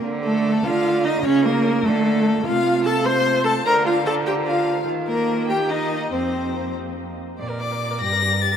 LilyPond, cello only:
\new Staff \with { instrumentName = "Cello" } { \clef bass \time 6/8 \key d \phrygian \tempo 4. = 99 d4. d4. | des4. d4. | \key f \mixolydian c2. | d2. |
ees2. | f,2~ f,8 r8 | bes,4. g,4. | }